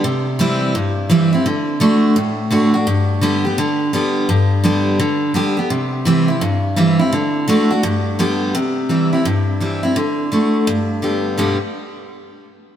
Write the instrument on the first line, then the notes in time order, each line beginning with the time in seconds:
steel-string acoustic guitar
0.04 C3
0.39 E3 G3 C4 E4
0.75 G2
1.10 E3 G3 C4 E4
1.33 C4 E4
1.46 D3
1.80 D3 A3 D4 F#4
2.16 A2
2.50 D3 A3 D4 F#4
2.74 D4 F#4
2.87 G2
3.21 D3 G3 B3 G4
3.45 B3 G4
3.58 D3
3.93 D3 G3 B3 G4
4.29 G2
4.64 D3 G3 B3 G4
4.99 D3
5.34 D3 G3 B3 G4
5.57 B3 G4
5.70 C3
6.05 E3 G3 C4 E4
6.28 C4 E4
6.41 G2
6.76 E3 G3 C4 E4
6.99 C4 E4
7.13 D3
7.48 D3 A3 D4 F#4
7.71 D4 F#4
7.83 G2
8.19 D3 G3 B3 G4
8.55 C3
8.89 E3 G3 C4 E4
9.13 C4 E4
9.25 G2
9.60 E3 G3 C4 E4
9.83 C4 E4
9.96 D3
10.32 D3 A3 D4 F#4
10.67 G2
11.02 D3 G3 B3 G4
11.37 G2 B2 D3 G3 B3 G4